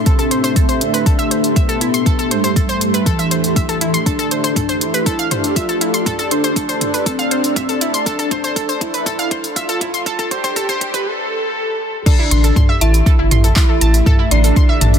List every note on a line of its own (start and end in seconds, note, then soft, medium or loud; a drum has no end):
0.00 11.02 A3 medium
0.00 11.06 A3 medium
0.00 4.06 D4 medium
0.00 4.06 G4 medium
0.00 4.02 A4 medium
0.00 4.02 E5 medium
0.00 4.06 E5 medium
0.00 11.06 C6 medium
0.06 0.83 C4 loud
0.06 0.18 A4 loud
0.06 kick loud
0.06 closed hi-hat medium
0.19 0.27 A4 loud
0.19 closed hi-hat soft
0.31 0.40 C5 medium
0.31 closed hi-hat loud
0.44 0.49 C5 loud
0.44 closed hi-hat soft
0.56 0.68 A4 medium
0.56 kick loud
0.56 closed hi-hat medium
0.69 0.81 C5 medium
0.69 closed hi-hat soft
0.81 1.58 D4 loud
0.81 closed hi-hat loud
0.94 1.02 B4 medium
0.94 closed hi-hat soft
1.06 1.18 A4 loud
1.06 kick loud
1.06 closed hi-hat medium
1.19 1.27 E5 loud
1.19 closed hi-hat soft
1.31 1.40 C5 medium
1.31 closed hi-hat loud
1.44 closed hi-hat soft
1.56 2.33 B3 loud
1.56 1.65 E5 medium
1.56 kick loud
1.56 closed hi-hat medium
1.69 1.77 A4 loud
1.69 closed hi-hat soft
1.81 1.90 E4 medium
1.81 closed hi-hat loud
1.94 1.99 C6 medium
1.94 closed hi-hat soft
2.06 2.18 A4 loud
2.06 kick loud
2.06 closed hi-hat medium
2.19 2.27 A4 loud
2.19 closed hi-hat soft
2.31 3.08 G3 loud
2.31 2.40 C5 medium
2.31 closed hi-hat loud
2.44 2.49 C5 loud
2.44 closed hi-hat soft
2.56 2.68 A4 medium
2.56 kick loud
2.56 closed hi-hat medium
2.69 2.81 C5 loud
2.69 closed hi-hat soft
2.81 closed hi-hat loud
2.94 3.02 B4 medium
2.94 closed hi-hat soft
3.06 3.96 E3 loud
3.06 3.18 A4 loud
3.06 kick loud
3.06 closed hi-hat medium
3.19 3.27 E5 loud
3.19 closed hi-hat soft
3.31 3.40 C5 medium
3.31 closed hi-hat loud
3.44 closed hi-hat soft
3.56 3.65 E5 medium
3.56 kick loud
3.56 closed hi-hat medium
3.69 3.77 A4 loud
3.69 closed hi-hat soft
3.81 3.90 E4 medium
3.81 closed hi-hat loud
3.94 3.99 C6 medium
3.94 closed hi-hat soft
4.06 4.83 D4 loud
4.06 4.18 A4 loud
4.06 11.02 A4 medium
4.06 11.02 D5 medium
4.06 11.02 A5 medium
4.06 kick loud
4.06 closed hi-hat medium
4.15 11.06 D4 medium
4.19 8.23 G4 medium
4.19 4.27 A4 loud
4.19 closed hi-hat soft
4.31 4.40 C5 medium
4.31 closed hi-hat loud
4.44 4.49 C5 loud
4.44 closed hi-hat soft
4.56 4.68 A4 medium
4.56 kick loud
4.56 closed hi-hat medium
4.56 mid tom medium
4.69 4.81 C5 loud
4.69 closed hi-hat soft
4.81 5.46 E4 loud
4.81 11.06 D5 medium
4.81 closed hi-hat loud
4.94 5.02 B4 medium
4.94 closed hi-hat soft
5.06 5.18 A4 loud
5.06 kick loud
5.06 closed hi-hat medium
5.19 5.27 F5 loud
5.19 closed hi-hat soft
5.31 5.40 C5 medium
5.31 closed hi-hat loud
5.31 mid tom medium
5.44 closed hi-hat soft
5.56 6.21 F4 loud
5.56 5.65 E5 medium
5.56 kick loud
5.56 closed hi-hat medium
5.69 5.77 A4 loud
5.69 closed hi-hat soft
5.81 5.90 E4 medium
5.81 closed hi-hat loud
5.94 5.99 C6 medium
5.94 closed hi-hat soft
6.06 6.18 A4 loud
6.06 kick loud
6.06 closed hi-hat medium
6.06 mid tom medium
6.19 6.27 A4 loud
6.19 closed hi-hat soft
6.31 6.96 D4 loud
6.31 6.40 C5 medium
6.31 closed hi-hat loud
6.44 6.49 C5 loud
6.44 closed hi-hat soft
6.56 6.68 A4 medium
6.56 kick loud
6.56 closed hi-hat medium
6.69 6.81 C5 loud
6.69 closed hi-hat soft
6.81 closed hi-hat loud
6.81 mid tom loud
6.94 7.02 B4 medium
6.94 closed hi-hat soft
7.06 7.96 C4 loud
7.06 7.18 A4 loud
7.06 kick loud
7.06 closed hi-hat medium
7.19 7.27 F5 loud
7.19 closed hi-hat soft
7.31 7.40 C5 medium
7.31 closed hi-hat loud
7.44 closed hi-hat soft
7.56 7.65 E5 medium
7.56 kick loud
7.56 closed hi-hat medium
7.56 mid tom loud
7.69 7.77 A4 loud
7.69 closed hi-hat soft
7.81 7.90 E4 medium
7.81 closed hi-hat loud
7.94 7.99 C6 medium
7.94 closed hi-hat soft
8.06 8.71 D4 loud
8.06 8.18 A4 loud
8.06 11.06 A4 medium
8.06 kick loud
8.06 closed hi-hat medium
8.19 8.27 A4 loud
8.19 closed hi-hat soft
8.31 8.40 C5 medium
8.31 kick loud
8.31 closed hi-hat loud
8.31 mid tom medium
8.44 8.49 C5 loud
8.44 closed hi-hat soft
8.56 8.68 A4 medium
8.56 kick loud
8.56 closed hi-hat medium
8.69 8.81 C5 loud
8.69 closed hi-hat soft
8.81 9.46 E4 loud
8.81 kick loud
8.81 closed hi-hat loud
8.94 9.02 B4 medium
8.94 closed hi-hat soft
9.06 9.18 A4 loud
9.06 kick loud
9.06 closed hi-hat medium
9.06 mid tom loud
9.19 9.27 F5 loud
9.19 closed hi-hat soft
9.31 9.40 C5 medium
9.31 kick loud
9.31 closed hi-hat loud
9.44 closed hi-hat soft
9.56 10.33 F4 loud
9.56 9.65 E5 medium
9.56 kick loud
9.56 closed hi-hat medium
9.69 9.77 A4 loud
9.69 closed hi-hat soft
9.81 9.90 E4 medium
9.81 kick loud
9.81 closed hi-hat loud
9.81 mid tom loud
9.94 9.99 C6 medium
9.94 closed hi-hat soft
10.06 10.18 A4 loud
10.06 kick loud
10.06 closed hi-hat medium
10.19 10.27 A4 loud
10.19 kick medium
10.19 closed hi-hat soft
10.31 11.08 G4 loud
10.31 10.40 C5 medium
10.31 kick loud
10.31 closed hi-hat loud
10.44 10.49 C5 loud
10.44 kick medium
10.44 closed hi-hat soft
10.56 10.68 A4 medium
10.56 kick loud
10.56 closed hi-hat medium
10.56 mid tom medium
10.69 10.81 C5 loud
10.69 kick medium
10.69 closed hi-hat soft
10.81 kick loud
10.81 closed hi-hat loud
10.94 11.02 B4 medium
10.94 kick medium
10.94 closed hi-hat soft
11.06 11.96 A4 loud
12.06 14.99 A3 medium
12.06 12.71 D4 loud
12.06 12.15 A4 loud
12.06 14.99 A4 medium
12.06 12.71 D5 loud
12.06 14.99 E5 medium
12.06 kick loud
12.06 closed hi-hat soft
12.06 crash loud
12.11 14.99 G4 medium
12.19 12.24 E4 medium
12.31 12.51 A1 loud
12.31 12.43 C6 medium
12.31 closed hi-hat loud
12.44 12.56 A4 medium
12.44 closed hi-hat soft
12.50 14.99 A4 medium
12.56 12.65 C6 medium
12.56 kick loud
12.56 closed hi-hat soft
12.56 mid tom loud
12.69 12.77 E5 loud
12.79 13.01 A1 medium
12.79 13.46 E4 loud
12.79 14.99 E5 medium
12.79 13.46 E5 medium
12.79 12.93 A5 medium
12.79 closed hi-hat loud
12.94 closed hi-hat soft
13.06 13.15 A4 medium
13.06 kick loud
13.06 closed hi-hat soft
13.19 13.29 G1 medium
13.19 13.24 E4 medium
13.31 13.51 A1 loud
13.31 13.43 C6 medium
13.31 closed hi-hat loud
13.31 mid tom medium
13.44 13.52 A4 medium
13.44 closed hi-hat soft
13.56 14.21 E4 loud
13.56 14.21 E5 medium
13.56 13.65 C6 medium
13.56 kick loud
13.56 clap loud
13.56 closed hi-hat soft
13.69 13.74 A4 medium
13.81 14.01 A1 medium
13.81 13.93 A5 medium
13.81 closed hi-hat loud
13.94 closed hi-hat soft
14.06 14.15 A4 loud
14.06 kick loud
14.06 closed hi-hat soft
14.06 mid tom medium
14.19 14.24 E4 medium
14.31 14.51 A1 loud
14.31 14.99 D4 loud
14.31 14.99 D5 medium
14.31 14.43 C6 medium
14.31 closed hi-hat loud
14.44 14.56 A4 medium
14.44 closed hi-hat soft
14.56 14.65 C6 medium
14.56 kick loud
14.56 closed hi-hat soft
14.69 14.77 E5 loud
14.81 14.99 A1 medium
14.81 14.93 A5 medium
14.81 closed hi-hat loud
14.81 mid tom medium
14.94 closed hi-hat soft